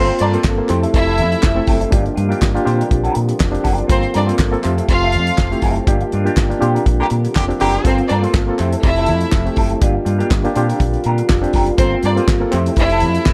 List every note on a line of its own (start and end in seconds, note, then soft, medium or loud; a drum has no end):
0.00 0.10 G1 loud
0.00 1.91 C3 medium
0.00 0.25 A#3 medium
0.00 0.69 A#3 medium
0.00 0.16 C4 medium
0.00 0.26 C4 medium
0.00 0.26 F4 medium
0.00 0.69 F4 medium
0.00 0.26 A4 medium
0.00 1.91 A4 medium
0.07 muted clean electric guitar stroke medium
0.07 closed hi-hat soft
0.19 0.36 G2 medium
0.19 0.34 C4 medium
0.19 0.31 D4 medium
0.19 0.34 F4 medium
0.19 0.33 A#4 medium
0.19 0.31 D5 medium
0.19 closed hi-hat medium
0.33 0.53 A#3 medium
0.33 0.53 C4 medium
0.33 0.44 C4 medium
0.33 0.53 F4 medium
0.33 0.45 F4 medium
0.33 0.54 A4 medium
0.33 0.46 C5 medium
0.33 closed hi-hat soft
0.44 0.60 G1 medium
0.44 kick loud
0.44 snare loud
0.44 clap loud
0.44 clap medium
0.58 0.67 A#3 loud
0.58 0.67 C4 medium
0.58 0.67 F4 medium
0.58 0.67 C5 loud
0.58 muted clean electric guitar stroke medium
0.69 0.85 F2 medium
0.69 1.91 F3 medium
0.69 1.40 A3 medium
0.69 0.83 C4 medium
0.69 1.40 C4 medium
0.69 1.40 E4 medium
0.69 0.82 E4 medium
0.69 1.92 E4 medium
0.69 1.40 G4 loud
0.69 0.82 C5 loud
0.69 clap medium
0.69 closed hi-hat medium
0.82 0.92 C4 soft
0.82 0.93 E4 medium
0.82 0.93 A4 medium
0.82 closed hi-hat medium
0.93 1.20 F1 loud
0.93 1.64 E4 loud
0.93 1.64 E5 loud
0.93 muted clean electric guitar stroke soft
0.93 kick loud
0.93 closed hi-hat medium
1.07 1.18 C4 medium
1.07 1.18 E4 medium
1.07 1.18 A4 medium
1.18 1.34 F2 medium
1.18 muted clean electric guitar stroke medium
1.18 closed hi-hat medium
1.32 muted clean electric guitar stroke soft
1.32 closed hi-hat soft
1.42 1.59 F1 loud
1.42 muted clean electric guitar stroke soft
1.42 kick loud
1.42 snare loud
1.42 clap medium
1.55 1.86 A3 loud
1.55 1.86 C4 medium
1.55 1.86 E4 medium
1.55 1.86 A4 loud
1.55 muted clean electric guitar stroke soft
1.67 1.83 F#1 medium
1.67 1.81 C4 medium
1.67 1.80 E4 loud
1.67 1.79 A4 loud
1.67 kick loud
1.67 snare soft
1.67 open hi-hat medium
1.80 1.92 C4 medium
1.80 1.93 E4 medium
1.80 1.94 A4 medium
1.80 closed hi-hat soft
1.90 2.08 G1 loud
1.90 2.66 D#3 medium
1.90 7.81 F3 medium
1.90 2.10 G3 medium
1.90 3.88 G3 medium
1.90 2.22 A#3 medium
1.90 2.22 D4 medium
1.90 2.04 D4 medium
1.90 2.66 D4 medium
1.90 2.23 F4 medium
1.90 2.03 F4 medium
1.90 2.23 G4 loud
1.90 kick loud
1.90 closed hi-hat loud
2.04 muted clean electric guitar stroke soft
2.04 closed hi-hat soft
2.15 2.33 G2 medium
2.15 2.29 G3 medium
2.15 2.29 D4 medium
2.15 2.28 F4 medium
2.15 closed hi-hat medium
2.29 2.39 G3 medium
2.29 2.50 A#3 medium
2.29 2.40 D4 medium
2.29 2.50 D4 medium
2.29 2.50 F4 medium
2.29 2.41 G4 medium
2.29 2.50 G4 medium
2.29 closed hi-hat soft
2.41 2.57 G1 loud
2.41 muted clean electric guitar stroke soft
2.41 kick loud
2.41 snare loud
2.41 clap loud
2.54 2.64 A#3 medium
2.54 2.64 D4 medium
2.54 2.64 F4 medium
2.54 2.65 G4 loud
2.54 muted clean electric guitar stroke soft
2.54 closed hi-hat soft
2.64 2.82 A#2 loud
2.64 3.89 D3 medium
2.64 4.62 A#3 medium
2.64 3.36 C4 medium
2.64 3.36 D4 medium
2.64 2.79 D4 medium
2.64 3.37 F4 medium
2.64 3.37 G4 loud
2.64 2.78 G4 medium
2.64 2.78 C5 medium
2.64 closed hi-hat medium
2.79 2.89 D4 medium
2.79 2.89 G4 medium
2.79 2.90 A#4 medium
2.79 closed hi-hat soft
2.90 3.07 A#1 medium
2.90 muted clean electric guitar stroke soft
2.90 kick loud
2.90 closed hi-hat medium
3.04 3.14 D4 medium
3.04 3.14 G4 medium
3.04 3.15 A#4 medium
3.04 closed hi-hat soft
3.15 3.31 A#2 medium
3.15 muted clean electric guitar stroke medium
3.15 closed hi-hat medium
3.29 muted clean electric guitar stroke soft
3.29 closed hi-hat medium
3.40 3.56 F1 loud
3.40 kick loud
3.40 snare loud
3.40 clap medium
3.52 3.83 C4 medium
3.52 3.83 D4 medium
3.52 3.83 F4 medium
3.52 3.83 G4 medium
3.52 muted clean electric guitar stroke soft
3.52 closed hi-hat soft
3.64 3.81 F#1 medium
3.64 3.85 D4 loud
3.64 3.77 G4 loud
3.64 3.76 A#4 medium
3.64 kick medium
3.64 snare soft
3.64 open hi-hat medium
3.77 muted clean electric guitar stroke medium
3.77 closed hi-hat soft
3.87 4.05 G1 loud
3.87 4.63 C3 medium
3.87 4.20 A#3 medium
3.87 4.07 C4 medium
3.87 4.20 C4 medium
3.87 4.01 C4 loud
3.87 4.02 F4 medium
3.87 4.20 F4 medium
3.87 5.85 A4 medium
3.87 4.20 A4 loud
3.87 4.01 A#4 medium
3.87 4.00 C5 loud
3.87 kick loud
3.87 closed hi-hat loud
4.02 muted clean electric guitar stroke soft
4.02 closed hi-hat soft
4.13 4.30 G2 loud
4.13 4.26 C4 medium
4.13 4.26 D4 medium
4.13 4.25 F4 medium
4.13 4.26 A#4 medium
4.13 4.26 D5 loud
4.13 closed hi-hat medium
4.26 4.47 A#3 medium
4.26 4.36 C4 medium
4.26 4.48 C4 medium
4.26 4.36 F4 medium
4.26 4.48 F4 medium
4.26 4.48 A4 medium
4.26 4.37 C5 medium
4.26 closed hi-hat soft
4.37 4.55 G1 loud
4.37 muted clean electric guitar stroke soft
4.37 kick loud
4.37 snare loud
4.37 clap loud
4.51 4.61 A#3 medium
4.51 4.61 C4 medium
4.51 4.62 F4 medium
4.51 4.62 A4 loud
4.51 muted clean electric guitar stroke soft
4.51 closed hi-hat soft
4.62 4.80 F2 medium
4.62 5.86 C3 medium
4.62 5.34 A3 medium
4.62 4.77 C4 medium
4.62 5.34 C4 medium
4.62 5.86 C4 medium
4.62 4.76 E4 medium
4.62 5.35 F4 medium
4.62 5.35 G4 loud
4.62 4.77 C5 medium
4.62 clap medium
4.62 closed hi-hat medium
4.77 4.87 C4 medium
4.77 4.87 E4 medium
4.77 4.87 A4 medium
4.77 closed hi-hat medium
4.88 5.16 F1 loud
4.88 5.59 F4 loud
4.88 5.59 F5 loud
4.88 muted clean electric guitar stroke soft
4.88 kick loud
4.88 closed hi-hat medium
5.02 5.11 C4 medium
5.02 5.11 E4 medium
5.02 5.11 A4 medium
5.12 5.30 F2 medium
5.12 closed hi-hat medium
5.26 muted clean electric guitar stroke soft
5.26 closed hi-hat medium
5.38 5.54 F1 medium
5.38 kick loud
5.38 snare loud
5.38 clap medium
5.51 5.81 A3 loud
5.51 5.81 C4 medium
5.51 5.81 E4 medium
5.51 5.81 G4 loud
5.51 muted clean electric guitar stroke soft
5.51 closed hi-hat soft
5.62 5.78 F#1 loud
5.62 5.83 C4 loud
5.62 5.75 E4 medium
5.62 5.75 A4 loud
5.62 kick medium
5.62 snare soft
5.62 open hi-hat medium
5.76 muted clean electric guitar stroke soft
5.76 closed hi-hat soft
5.86 6.03 G1 loud
5.86 6.61 D#3 medium
5.86 6.06 G3 medium
5.86 7.83 G3 medium
5.86 6.18 A#3 medium
5.86 6.18 D4 medium
5.86 6.02 D4 medium
5.86 6.61 D4 medium
5.86 6.18 F4 medium
5.86 6.01 F4 medium
5.86 6.18 G4 loud
5.86 kick loud
5.86 closed hi-hat loud
6.01 muted clean electric guitar stroke soft
6.01 closed hi-hat soft
6.12 6.28 G2 medium
6.12 6.26 G3 medium
6.12 6.26 D4 medium
6.12 6.26 F4 medium
6.12 closed hi-hat medium
6.24 6.36 G3 medium
6.24 6.44 A#3 medium
6.24 6.45 D4 medium
6.24 6.37 D4 medium
6.24 6.45 F4 medium
6.24 6.45 G4 medium
6.24 6.38 G4 medium
6.24 closed hi-hat soft
6.37 6.52 G1 loud
6.37 kick loud
6.37 snare loud
6.37 clap loud
6.37 clap medium
6.49 6.58 A#3 medium
6.49 6.59 D4 medium
6.49 6.59 F4 medium
6.49 6.59 G4 loud
6.49 muted clean electric guitar stroke soft
6.49 closed hi-hat soft
6.60 6.77 A#2 loud
6.60 7.83 D3 medium
6.60 8.56 A#3 medium
6.60 7.31 C4 medium
6.60 7.31 D4 medium
6.60 6.74 D4 medium
6.60 7.32 F4 medium
6.60 7.32 G4 loud
6.60 6.74 G4 medium
6.60 6.74 C5 medium
6.60 closed hi-hat medium
6.75 6.85 D4 medium
6.75 6.85 G4 medium
6.75 6.86 A#4 medium
6.75 closed hi-hat medium
6.86 7.01 A#1 loud
6.86 muted clean electric guitar stroke soft
6.86 kick loud
6.86 closed hi-hat medium
7.00 7.07 D3 medium
7.00 7.07 A#3 medium
7.00 7.09 D4 medium
7.00 7.07 G4 medium
7.00 7.10 G4 medium
7.00 7.10 A#4 medium
7.10 7.26 A#2 medium
7.10 muted clean electric guitar stroke soft
7.10 closed hi-hat medium
7.24 muted clean electric guitar stroke soft
7.24 closed hi-hat medium
7.35 7.51 F1 loud
7.35 7.44 D3 medium
7.35 7.44 A#3 medium
7.35 7.44 G4 medium
7.35 kick loud
7.35 snare loud
7.35 clap medium
7.48 7.78 C4 loud
7.48 7.78 D4 medium
7.48 7.78 F4 medium
7.48 7.79 G4 loud
7.48 muted clean electric guitar stroke soft
7.48 closed hi-hat soft
7.60 7.76 F#1 medium
7.60 7.93 D3 medium
7.60 7.93 C4 medium
7.60 7.78 D4 medium
7.60 7.93 G4 loud
7.60 7.75 G4 medium
7.60 7.74 A#4 loud
7.60 snare soft
7.60 open hi-hat medium
7.73 muted clean electric guitar stroke medium
7.73 closed hi-hat soft
7.84 8.00 G1 loud
7.84 9.80 C3 medium
7.84 8.15 A#3 medium
7.84 8.15 C4 medium
7.84 8.04 C4 medium
7.84 7.96 C4 loud
7.84 8.15 F4 medium
7.84 8.00 F4 loud
7.84 8.59 F4 medium
7.84 8.16 A4 loud
7.84 9.81 A4 medium
7.84 7.98 A#4 medium
7.84 7.96 C5 loud
7.84 kick loud
7.84 closed hi-hat loud
7.98 muted clean electric guitar stroke soft
7.98 closed hi-hat soft
8.08 8.25 G2 medium
8.08 8.25 C4 medium
8.08 8.20 D4 medium
8.08 8.24 F4 medium
8.08 8.24 A#4 medium
8.08 8.19 D5 medium
8.08 closed hi-hat medium
8.22 8.42 A#3 medium
8.22 8.42 C4 medium
8.22 8.33 C4 medium
8.22 8.42 F4 medium
8.22 8.34 F4 medium
8.22 8.43 A4 medium
8.22 8.35 C5 medium
8.22 closed hi-hat soft
8.34 8.49 G1 loud
8.34 kick loud
8.34 snare loud
8.34 clap loud
8.34 clap medium
8.47 8.56 A#3 medium
8.47 8.57 C4 medium
8.47 8.57 F4 medium
8.47 8.57 A4 medium
8.47 muted clean electric guitar stroke medium
8.58 8.75 F2 medium
8.58 9.81 F3 medium
8.58 9.29 A3 medium
8.58 9.29 C4 medium
8.58 8.73 C4 medium
8.58 9.81 E4 medium
8.58 9.29 E4 medium
8.58 8.72 E4 loud
8.58 9.29 G4 loud
8.58 8.72 C5 medium
8.58 clap medium
8.58 closed hi-hat medium
8.72 8.83 C4 medium
8.72 8.83 E4 medium
8.72 8.84 A4 medium
8.72 closed hi-hat medium
8.82 9.09 F1 loud
8.82 9.52 E4 loud
8.82 9.53 E5 loud
8.82 muted clean electric guitar stroke soft
8.82 kick loud
8.82 closed hi-hat medium
8.96 9.08 C4 medium
8.96 9.08 E4 medium
8.96 9.09 A4 loud
8.96 closed hi-hat soft
9.06 9.23 F2 loud
9.06 muted clean electric guitar stroke soft
9.06 closed hi-hat medium
9.21 muted clean electric guitar stroke soft
9.21 closed hi-hat medium
9.32 9.48 F1 loud
9.32 kick loud
9.32 snare loud
9.32 clap medium
9.45 9.75 A3 medium
9.45 9.75 C4 medium
9.45 9.76 E4 medium
9.45 9.76 G4 loud
9.45 muted clean electric guitar stroke medium
9.45 closed hi-hat soft
9.56 9.73 F#1 medium
9.56 9.75 C4 medium
9.56 9.71 E4 medium
9.56 9.70 A4 medium
9.56 kick loud
9.56 open hi-hat medium
9.70 muted clean electric guitar stroke soft
9.70 closed hi-hat soft
9.81 9.97 G1 loud
9.81 10.55 D#3 medium
9.81 10.00 G3 medium
9.81 11.77 G3 medium
9.81 10.12 A#3 medium
9.81 10.12 D4 medium
9.81 10.55 D4 medium
9.81 9.94 D4 medium
9.81 12.50 F4 medium
9.81 10.13 F4 medium
9.81 9.93 F4 medium
9.81 10.13 G4 medium
9.81 kick loud
9.81 closed hi-hat loud
9.94 muted clean electric guitar stroke soft
10.05 10.21 G2 medium
10.05 10.19 G3 medium
10.05 10.19 D4 medium
10.05 10.19 F4 medium
10.05 closed hi-hat medium
10.18 10.29 G3 medium
10.18 10.39 A#3 medium
10.18 10.39 D4 medium
10.18 10.30 D4 medium
10.18 10.39 F4 medium
10.18 10.31 G4 medium
10.18 10.40 G4 loud
10.18 closed hi-hat soft
10.30 10.46 G1 loud
10.30 muted clean electric guitar stroke soft
10.30 kick loud
10.30 snare loud
10.30 clap loud
10.44 10.53 A#3 medium
10.44 10.54 D4 medium
10.44 10.54 F4 medium
10.44 10.54 G4 medium
10.44 muted clean electric guitar stroke soft
10.44 closed hi-hat soft
10.54 10.71 A#2 loud
10.54 11.77 D3 medium
10.54 12.50 A#3 medium
10.54 11.27 C4 medium
10.54 10.69 D4 medium
10.54 11.26 D4 medium
10.54 11.27 F4 medium
10.54 10.68 G4 medium
10.54 11.27 G4 loud
10.54 10.69 C5 medium
10.54 closed hi-hat medium
10.69 10.83 D4 medium
10.69 10.82 G4 medium
10.69 10.82 A#4 medium
10.69 closed hi-hat medium
10.80 10.96 A#1 loud
10.80 kick loud
10.80 closed hi-hat medium
10.94 muted clean electric guitar stroke medium
10.94 closed hi-hat soft
11.04 11.21 A#2 medium
11.04 11.24 D4 medium
11.04 11.18 G4 loud
11.04 11.18 A#4 medium
11.04 closed hi-hat medium
11.18 muted clean electric guitar stroke medium
11.18 closed hi-hat soft
11.29 11.45 F1 medium
11.29 kick loud
11.29 snare loud
11.29 clap medium
11.29 clap loud
11.41 11.72 C4 loud
11.41 11.72 D4 medium
11.41 11.72 F4 medium
11.41 11.72 G4 loud
11.41 muted clean electric guitar stroke soft
11.41 closed hi-hat soft
11.53 11.69 F#1 medium
11.53 11.72 D4 medium
11.53 11.69 G4 medium
11.53 11.68 A#4 medium
11.53 kick medium
11.53 snare soft
11.53 open hi-hat medium
11.66 muted clean electric guitar stroke soft
11.66 closed hi-hat soft
11.77 11.94 G1 loud
11.77 13.33 C3 medium
11.77 12.08 A#3 medium
11.77 12.09 C4 medium
11.77 11.89 C4 loud
11.77 11.97 C4 medium
11.77 12.09 F4 medium
11.77 11.93 F4 medium
11.77 13.33 A4 medium
11.77 12.09 A4 loud
11.77 11.92 A#4 loud
11.77 11.89 C5 loud
11.77 kick loud
11.77 closed hi-hat loud
11.93 muted clean electric guitar stroke soft
12.03 12.19 G2 loud
12.03 12.19 C4 medium
12.03 12.15 D4 medium
12.03 12.17 F4 medium
12.03 12.18 A#4 medium
12.03 12.14 D5 loud
12.03 closed hi-hat medium
12.16 12.36 A#3 medium
12.16 12.36 C4 medium
12.16 12.28 C4 medium
12.16 12.37 F4 medium
12.16 12.29 F4 medium
12.16 12.37 G4 medium
12.16 12.30 C5 medium
12.16 closed hi-hat soft
12.28 12.44 G1 loud
12.28 muted clean electric guitar stroke soft
12.28 kick loud
12.28 snare loud
12.28 clap loud
12.40 12.50 A#3 medium
12.40 12.50 C4 medium
12.40 12.50 F4 medium
12.40 12.50 A4 loud
12.40 muted clean electric guitar stroke soft
12.51 12.68 F2 loud
12.51 13.33 F3 medium
12.51 13.22 A3 medium
12.51 13.22 C4 medium
12.51 12.68 C4 medium
12.51 13.23 E4 medium
12.51 13.33 E4 medium
12.51 12.67 E4 medium
12.51 13.23 G4 loud
12.51 clap medium
12.51 closed hi-hat medium
12.56 12.67 C5 loud
12.66 12.78 C4 medium
12.66 12.78 E4 medium
12.66 12.78 A4 medium
12.66 closed hi-hat medium
12.76 13.03 F1 medium
12.76 13.33 E4 loud
12.76 13.33 E5 loud
12.76 muted clean electric guitar stroke soft
12.76 kick loud
12.76 closed hi-hat medium
12.90 13.03 E4 medium
12.90 13.03 A4 medium
12.90 closed hi-hat soft
12.94 13.02 C4 medium
13.00 13.17 F2 loud
13.00 muted clean electric guitar stroke soft
13.00 closed hi-hat medium
13.15 muted clean electric guitar stroke medium
13.15 closed hi-hat medium
13.26 13.33 F1 loud
13.26 muted clean electric guitar stroke soft
13.26 kick loud
13.26 snare loud
13.26 clap medium